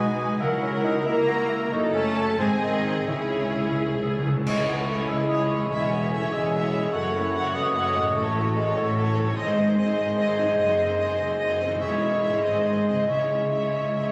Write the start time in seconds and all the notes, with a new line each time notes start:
Already playing: B1 B2 G#3 B3 D#4 F#4 B4 D#5 G#5
0.18 D#4 F#4 D#5
0.40 C#2 C#3 F#3 A#3 E4 F#4 A#4 E5 F#5
0.62 C#4 E4 A#4 E5
0.84 D#4 A#4 E5
1.06 A#3 E4 A#4 E5 A#5
1.28 F#4 A#4 E5
1.50 E4 A#4 E5
1.72 F#1 F#2 C#4 D#4 F#4 A4 C#5
1.94 A3 C#4 A4 C#5 A5
2.16 C#4 F#4 A4 C#5
2.38 G#1 G#2 G#3 C4 D#4 G#4 C5 G#5
2.61 D#3 C4 G#4 C5 D#5
2.84 D#4 G#4 C5
3.07 C#2 C#3 C#4 E4 G#4 C#5 E5
3.24 C#3
3.31 C#4 G#4 E5
3.40 C#3
3.48 C#3
3.54 C#3 G#4 E5
3.71 C#3
3.77 C#3 G#4 C#5 E5
3.86 C#3
3.95 C#3
4.00 C#3 E4 G#4 E5
4.11 C#3
4.19 C#3
4.24 C#3 C#4 G#4 E5
4.28 C#3
4.33 C#3 C#4
4.38 E4
4.42 G#4
4.46 C#2 C#3 G#3 C#4 E4 C#5 E5, concert bass drum, crash
4.57 C#4 G#4
4.67 G#3 B3 E4 C#5
4.77 C#4 G#4
4.87 G#3 A3 E4 C#5
4.98 C#4 G#4
5.07 C#2 G#3 E4 C#5 E5
5.18 C#4 G#4
5.28 G#3 E4 C#5 D#5
5.39 C#4 G#4
5.49 E2 G#3 E4 C#5
5.57 C#4 G#4
5.62 E4
5.66 E4 G#4 C#5
5.71 E1 E2 G#3 E4 G#4 E5 G#5
5.80 C#4 E4 C#5
5.91 B3 E4 G#4 E5
6.01 C#4 E4 C#5
6.11 A3 E4 G#4 E5
6.21 C#4 E4 C#5
6.31 E1 E2 G#3 E4 G#4 E5
6.42 C#4 E4 C#5
6.52 F#3 E4 G#4 E5
6.62 C#4 E4 C#5
6.72 F#2 G#3 E4 G#4 E5
6.79 C#4 E4 C#5
6.83 C#4 A4
6.92 F#1 F#2 A3 C#4 F#4 A4 C#5 F#5
7.02 C#4 F#4 C#5
7.12 A3 E4 A4 F#5
7.23 C#4 F#4 C#5
7.33 A3 F#4 A4 F#5
7.44 C#4 F#4 C#5
7.53 F#1 F#2 A3 B3 F#4 A4 D#5 F#5
7.64 C#4 F#4 C#5
7.73 A3 A4 F#5
7.84 C#4 F#4 C#5
7.94 A2 G#3 A3 A4 F#5
8.02 C#4 F#4 C#5
8.06 F#4
8.14 A1 A2 A3 F#4 A4 C#5 A5
8.24 C#4 A4 C#5
8.34 A3 F#4 A4
8.44 C#4 A4 C#5
8.54 G#3 A3 F#4 A4
8.65 C#4 A4 C#5
8.75 A1 A2 F#3 A3 F#4 A4 C#5 A5
8.85 C#4 A4 C#5
8.96 A3 F#4 A4
9.06 C#4 A4 C#5
9.15 G#2 A3 F#4 A4
9.23 C4 C#4 A4 C#5
9.28 D#4
9.33 G#1 G#4 C5 D#5
9.37 G#2 G#3 C4 G#4
9.47 D#4 C5
9.57 C4 G#4 D#5
9.67 D#4 C5
9.76 C4 D#4 G#4 D#5
9.87 D#4 C5
9.96 G#1 G#2 C4 G#4 D#5
10.06 D#4 C5
10.16 C4 G#4 D#5
10.26 D#4 C5
10.37 F#2 C4 D#4 G#4 D#5
10.45 C4 D#4 C5
10.49 D#4 C5
10.54 C4 G#4
10.58 F#1 F#2 G#4 D#5
10.68 D#4 F#4 C5
10.78 C4 G#4 D#5
10.88 D#4 F#4 C5
10.98 G#3 C4 G#4 D#5
11.08 D#4 F#4 C5
11.18 F#1 F#2 C4 G#4 D#5
11.28 D#4 F#4 C5
11.38 C4 G#4 D#5
11.49 D#4 F#4 C5
11.59 G#3 C4 G#4 D#5
11.63 E2
11.68 C#4 D#4 F#4 C5
11.72 E4
11.77 C#4 G#4 E5
11.81 E1 E2 G#3 G#4 C#5 E5
11.90 E4 C#5
12.01 C#4 G#4 E5
12.11 E4 C#5
12.22 G#3 C#4 G#4 E5
12.26 G#2
12.30 C4 E4 C#5
12.35 D#4
12.39 G#1 G#4 D#5
12.44 G#2 C4 G#4 C5 D#5
12.54 D#4 C5
12.65 C4 G#4 D#5
12.77 D#4 C5
12.86 G#3 C4 G#4 D#5
12.91 C#3
12.96 C#4 D#4 C5
13.00 E4
13.04 C#2 C#3 G#4 E5
13.09 C#3 C#4 G#4 C#5 E5
13.19 E4 C#5
13.30 C#4 G#4 E5
13.42 E4 C#5
13.51 G#3 C#4 E4 G#4 E5
13.62 E4 C#5
13.73 C#2 C#3 C#4 G#4 E5
13.83 E4 C#5
13.95 C#4 G#4 E5
14.05 E4 C#5